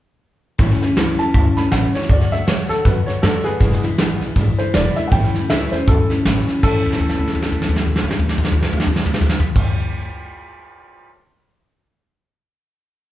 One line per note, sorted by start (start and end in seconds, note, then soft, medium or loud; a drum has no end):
0.58 0.75 A1 medium
0.58 0.81 A2 medium
0.58 0.81 E3 medium
0.58 0.81 A3 medium
0.58 0.80 C#4 loud
0.58 0.79 E4 loud
0.58 kick loud
0.58 snare soft
0.71 snare soft
0.80 0.95 A3 medium
0.80 0.95 C#4 medium
0.80 0.96 E4 medium
0.80 muted upright bass stroke medium
0.80 snare soft
0.96 1.12 C#2 loud
0.96 1.18 A2 medium
0.96 1.19 E3 medium
0.96 1.19 A3 medium
0.96 1.19 C#4 medium
0.96 1.18 E4 loud
0.96 snare loud
0.96 hi-hat pedal medium
1.19 1.30 E2 medium
1.19 1.33 A3 soft
1.19 1.34 C#4 medium
1.19 1.34 E4 medium
1.19 1.56 A5 medium
1.19 snare soft
1.33 1.50 D2 medium
1.33 1.56 E3 medium
1.33 1.57 A3 medium
1.33 1.56 C#4 medium
1.33 1.55 E4 medium
1.33 kick loud
1.33 snare soft
1.56 1.71 A3 soft
1.56 1.72 C#4 medium
1.56 1.72 E4 medium
1.56 1.72 B5 medium
1.56 muted upright bass stroke medium
1.56 snare soft
1.72 1.88 A1 medium
1.72 1.95 E3 medium
1.72 1.95 A3 medium
1.72 1.94 C#4 medium
1.72 1.93 E4 loud
1.72 1.94 F#5 medium
1.72 snare loud
1.72 hi-hat pedal medium
1.94 2.08 A3 soft
1.94 2.10 C#4 medium
1.94 2.10 E4 medium
1.94 2.10 C#5 medium
1.94 muted upright bass stroke medium
1.94 snare soft
2.02 snare soft
2.09 2.25 D2 medium
2.09 2.32 D3 medium
2.09 2.32 A3 medium
2.09 2.31 D4 medium
2.09 2.30 F#4 medium
2.09 2.32 D5 medium
2.09 kick loud
2.09 snare soft
2.21 snare soft
2.31 2.47 A3 soft
2.31 2.47 D4 soft
2.31 2.47 F#4 medium
2.31 2.47 E5 medium
2.31 muted upright bass stroke medium
2.31 snare soft
2.47 2.63 F#2 loud
2.47 2.70 D3 medium
2.47 2.70 A3 medium
2.47 2.69 D4 medium
2.47 2.68 F#4 medium
2.47 2.69 C#5 medium
2.47 snare loud
2.47 hi-hat pedal medium
2.69 2.80 A2 medium
2.69 2.84 A3 soft
2.69 2.84 D4 medium
2.69 2.85 F#4 medium
2.69 2.85 A4 loud
2.69 snare soft
2.84 3.01 F#2 medium
2.84 3.07 D3 medium
2.84 3.07 A3 medium
2.84 3.06 D4 medium
2.84 3.05 F#4 medium
2.84 3.07 B4 medium
2.84 kick loud
2.84 snare soft
3.06 3.22 A3 soft
3.06 3.22 D4 medium
3.06 3.23 F#4 medium
3.06 3.22 C#5 medium
3.06 muted upright bass stroke medium
3.06 snare soft
3.22 3.39 F#2 medium
3.22 3.45 D3 medium
3.22 3.45 A3 medium
3.22 3.44 D4 medium
3.22 3.43 F#4 medium
3.22 3.44 A4 medium
3.22 snare loud
3.22 hi-hat pedal medium
3.44 3.61 A3 soft
3.44 3.60 D4 medium
3.44 3.60 F#4 medium
3.44 3.80 G#4 medium
3.44 3.82 B4 medium
3.44 muted upright bass stroke medium
3.44 snare soft
3.60 3.77 E1 medium
3.60 3.83 E2 medium
3.60 3.83 B2 medium
3.60 3.83 E3 medium
3.60 3.82 G#3 medium
3.60 3.82 D4 medium
3.60 3.81 E4 medium
3.60 kick loud
3.60 snare soft
3.72 snare soft
3.82 3.97 E3 soft
3.82 3.98 G#3 soft
3.82 3.98 D4 medium
3.82 3.98 E4 medium
3.82 muted upright bass stroke medium
3.82 snare soft
3.98 4.14 G#1 medium
3.98 4.21 E2 medium
3.98 4.21 B2 loud
3.98 4.21 E3 medium
3.98 4.21 G#3 medium
3.98 4.20 D4 medium
3.98 4.19 E4 medium
3.98 snare loud
3.98 hi-hat pedal loud
4.20 4.32 B1 medium
4.20 4.34 E3 medium
4.20 4.35 G#3 medium
4.20 4.36 D4 medium
4.20 4.36 E4 medium
4.20 snare soft
4.35 4.52 A1 loud
4.35 4.58 E3 medium
4.35 4.58 G#3 medium
4.35 4.58 D4 medium
4.35 4.57 E4 medium
4.35 kick loud
4.35 snare soft
4.58 4.73 E3 soft
4.58 4.73 G#3 soft
4.58 4.73 D4 medium
4.58 4.74 E4 medium
4.58 4.74 C5 medium
4.58 muted upright bass stroke medium
4.58 snare soft
4.74 4.90 E1 loud
4.74 4.96 E2 medium
4.74 4.97 B2 medium
4.74 4.97 E3 medium
4.74 4.96 G#3 medium
4.74 4.96 D4 medium
4.74 4.95 E4 medium
4.74 4.96 D5 medium
4.74 snare loud
4.74 hi-hat pedal medium
4.96 5.11 E3 soft
4.96 5.12 G#3 medium
4.96 5.12 D4 medium
4.96 5.12 E4 medium
4.96 5.11 E5 medium
4.96 muted upright bass stroke medium
4.96 snare soft
5.08 5.34 A2 medium
5.08 5.11 F#5 medium
5.12 5.28 A1 loud
5.12 5.34 E3 medium
5.12 5.34 A3 medium
5.12 5.34 C#4 medium
5.12 5.33 E4 medium
5.12 5.49 G5 loud
5.12 kick loud
5.12 snare soft
5.23 snare soft
5.34 5.49 A3 medium
5.34 5.49 C#4 medium
5.34 5.50 E4 medium
5.34 muted upright bass stroke medium
5.34 snare soft
5.49 5.65 C#2 medium
5.49 5.72 A2 medium
5.49 5.72 E3 medium
5.49 5.72 A3 medium
5.49 5.72 C#4 medium
5.49 5.71 E4 medium
5.49 5.71 E5 medium
5.49 snare loud
5.49 hi-hat pedal medium
5.72 5.83 E2 medium
5.72 5.87 A3 soft
5.72 5.87 C#4 medium
5.72 5.87 E4 medium
5.72 5.87 C5 medium
5.72 snare soft
5.87 6.04 D2 medium
5.87 6.10 E3 medium
5.87 6.10 A3 medium
5.87 6.09 C#4 medium
5.87 6.08 E4 medium
5.87 6.09 A4 medium
5.87 kick loud
5.87 snare soft
6.09 6.25 A3 soft
6.09 6.25 C#4 medium
6.09 6.25 E4 medium
6.09 muted upright bass stroke medium
6.09 snare soft
6.25 6.41 A1 medium
6.25 6.48 A2 medium
6.25 6.48 E3 loud
6.25 6.48 A3 medium
6.25 6.47 C#4 medium
6.25 6.46 E4 loud
6.25 snare loud
6.25 hi-hat pedal medium
6.47 6.64 A3 soft
6.47 6.63 C#4 medium
6.47 6.63 E4 medium
6.47 snare soft
6.57 10.07 A2 medium
6.63 9.58 A1 loud
6.63 10.13 E3 medium
6.63 9.58 A4 loud
6.63 kick loud
6.63 crash loud
6.67 10.17 A3 medium
6.71 10.18 C#4 loud
6.71 10.18 E4 loud
6.86 floor tom soft
6.93 snare soft
7.00 floor tom soft
7.09 snare medium
7.19 floor tom medium
7.27 snare medium
7.35 floor tom medium
7.42 snare medium
7.52 floor tom medium
7.62 snare medium
7.69 floor tom medium
7.76 snare medium
7.86 floor tom medium
7.96 snare medium
8.03 floor tom medium
8.11 snare medium
8.19 floor tom medium
8.29 snare medium
8.38 floor tom medium
8.45 snare medium
8.52 floor tom medium
8.62 snare medium
8.73 floor tom medium
8.80 snare medium
8.87 floor tom medium
8.96 snare medium
9.06 floor tom medium
9.14 snare medium
9.21 floor tom medium
9.29 snare medium
9.40 floor tom loud
9.56 kick loud
9.56 crash loud